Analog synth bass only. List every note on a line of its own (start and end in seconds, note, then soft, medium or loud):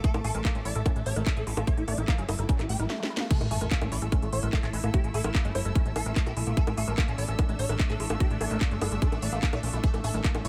0.14 0.21 A1 medium
0.24 0.31 A1 loud
0.35 0.41 A1 loud
0.55 0.61 A1 medium
0.65 0.72 A1 loud
0.75 0.82 A1 medium
0.96 1.02 A1 medium
1.06 1.12 A1 loud
1.16 1.23 A1 medium
1.37 1.43 A1 medium
1.47 1.53 A1 loud
1.57 1.64 A1 medium
1.77 1.84 A1 medium
1.88 1.94 A1 loud
1.98 2.04 A1 loud
2.18 2.25 G1 medium
2.29 2.35 G1 loud
2.39 2.45 G1 medium
2.59 2.66 A1 medium
2.69 2.76 A1 loud
2.80 2.86 A1 medium
3.41 3.47 A1 medium
3.51 3.57 A1 loud
3.61 3.68 A1 medium
3.82 3.88 A1 medium
3.92 3.98 A1 loud
4.02 4.08 A1 medium
4.22 4.29 A1 medium
4.33 4.39 A1 loud
4.43 4.49 A1 medium
4.63 4.70 A1 medium
4.73 4.80 A1 loud
4.84 4.90 A1 medium
5.04 5.10 A1 medium
5.14 5.21 A1 loud
5.24 5.31 A1 medium
5.45 5.51 G1 medium
5.55 5.61 G1 loud
5.65 5.72 G1 loud
5.86 5.92 A1 medium
5.96 6.02 A1 loud
6.06 6.12 A1 medium
6.26 6.33 A#1 medium
6.37 6.43 A#1 loud
6.47 6.53 A#1 medium
6.67 6.74 A1 medium
6.77 6.84 A1 loud
6.88 6.94 A1 loud
7.08 7.15 A1 medium
7.18 7.25 A1 loud
7.28 7.35 A1 medium
7.49 7.55 A1 medium
7.59 7.66 A1 loud
7.69 7.76 A1 medium
7.90 7.96 A1 medium
8.00 8.06 A1 loud
8.10 8.17 A1 loud
8.31 8.37 A1 medium
8.41 8.47 A1 loud
8.51 8.57 A1 loud
8.71 8.78 G1 medium
8.82 8.88 G1 loud
8.92 8.98 G1 medium
9.12 9.19 A1 medium
9.22 9.29 A1 loud
9.33 9.39 A1 medium
9.53 9.59 A#1 medium
9.63 9.70 A#1 loud
9.73 9.80 A#1 medium
9.94 10.00 A1 medium
10.04 10.10 A1 loud
10.14 10.21 A1 loud
10.35 10.41 A1 medium
10.45 10.48 A1 loud